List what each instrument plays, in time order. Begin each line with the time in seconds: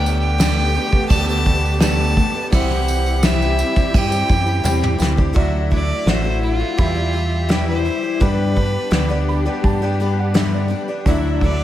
Already playing: fingered electric bass D2, twelve-string acoustic guitar D3 A3 B3 G4, string section A3 B3 G4, upright piano G4 A4 B4 D5, fiddle G5
0.06 tambourine
0.19 fiddle G5
0.38 twelve-string acoustic guitar D3 A3 B3 G4, snare, tambourine, crash
0.74 twelve-string acoustic guitar D3 A3 B3 G4
0.90 twelve-string acoustic guitar A3 B3 G4, kick
1.09 fingered electric bass D2, twelve-string acoustic guitar D3 A3 B3 G4, fiddle A5, kick, tambourine, crash
1.27 twelve-string acoustic guitar A3 B3 G4, fiddle A5
1.45 twelve-string acoustic guitar D3 A3 B3 G4, kick
1.66 tambourine
1.80 twelve-string acoustic guitar D3 A3 B3 G4, upright piano G4 A4 B4 D5, fiddle A5, snare, tambourine, crash
2.17 twelve-string acoustic guitar D3 A3 B3 G4, kick
2.35 twelve-string acoustic guitar A3 B3 G4
2.50 fingered electric bass C2, twelve-string acoustic guitar C3 E3 G3 C4 G4, string section C4 E4 G4, upright piano E4 G4 C5, fiddle F#5, kick, tambourine, crash
2.55 upright piano E5
2.70 snare
2.88 tambourine
3.06 tambourine
3.23 twelve-string acoustic guitar C3 E3 G3 C4 G4, fiddle E5, snare, tambourine, crash
3.42 tambourine
3.58 twelve-string acoustic guitar E3 G3 C4 G4, tambourine
3.76 twelve-string acoustic guitar G3 C4 G4, kick, tambourine
3.94 fingered electric bass G2, twelve-string acoustic guitar E3 G3 C4 G4, fiddle G5, kick, crash
4.09 twelve-string acoustic guitar G3 C4 G4, tambourine
4.28 fingered electric bass F#2, twelve-string acoustic guitar E3 C4 G4, kick, tambourine
4.47 tambourine
4.64 fingered electric bass E2, twelve-string acoustic guitar C3 E3 G3 C4 G4, high tom, tambourine
4.83 mid tom, tambourine
4.98 fingered electric bass D2, twelve-string acoustic guitar E3 G3 C4 G4, snare, tambourine
5.17 twelve-string acoustic guitar G3 C4 G4, kick
5.33 fingered electric bass D2, twelve-string acoustic guitar D3 A3 E4 F#4, upright piano F#3 D5, kick, open hi-hat
5.38 string section F#3 D4 E5, upright piano E5
5.70 twelve-string acoustic guitar D3 A3 E4 F#4, fiddle D5, kick, open hi-hat
6.06 fingered electric bass A1, twelve-string acoustic guitar D3 A3 E4 F#4, fiddle C5, snare, open hi-hat
6.24 twelve-string acoustic guitar A3 E4 F#4
6.43 fiddle F4, open hi-hat
6.60 twelve-string acoustic guitar A3 E4 F#4
6.77 twelve-string acoustic guitar E2 B2 E3 G3 E4 G4, fingered electric bass E2, string section G3 G4 E5, upright piano G4 E5 B5, kick, open hi-hat
6.95 twelve-string acoustic guitar E3 G3 E4 G4
7.13 twelve-string acoustic guitar G3 G4, open hi-hat
7.49 twelve-string acoustic guitar E2 B2 E3 G3 E4 G4, fiddle G4, snare, open hi-hat
7.67 fiddle C5
7.85 twelve-string acoustic guitar E3 G3 E4 G4, open hi-hat
8.02 twelve-string acoustic guitar E3 G3 E4 G4
8.20 twelve-string acoustic guitar G2 D3 G3 B3 D4 G4, fingered electric bass G2, string section B3 D4 G4, upright piano G4 B4 D5, fiddle B4, kick, open hi-hat
8.56 twelve-string acoustic guitar G3 B3 D4 G4, kick, open hi-hat
8.91 fingered electric bass D2, twelve-string acoustic guitar G2 D3 G3 B3 D4 G4, snare, open hi-hat
9.09 twelve-string acoustic guitar G3 B3 D4 G4
9.28 upright piano B5, open hi-hat
9.46 twelve-string acoustic guitar G3 B3 D4 G4, upright piano G5
9.63 fingered electric bass G2, upright piano A5, kick, open hi-hat
9.82 twelve-string acoustic guitar G3 B3 D4 G4, upright piano G5
10.00 twelve-string acoustic guitar G3 B3 D4 G4, open hi-hat
10.19 upright piano F#5
10.34 twelve-string acoustic guitar G2 D3 G3 B3 D4 G4, upright piano E5, snare, open hi-hat
10.54 upright piano D5
10.68 twelve-string acoustic guitar G3 B3 D4 G4, open hi-hat
10.88 twelve-string acoustic guitar G3 B3 D4 G4
11.06 fingered electric bass D2, twelve-string acoustic guitar D3 F#3 A3 D4 E4, upright piano F#3 D5 E5, string section F#3 D4 E5, kick, open hi-hat
11.40 twelve-string acoustic guitar F#3 A3 D4, fiddle D5, kick, open hi-hat
11.44 twelve-string acoustic guitar E4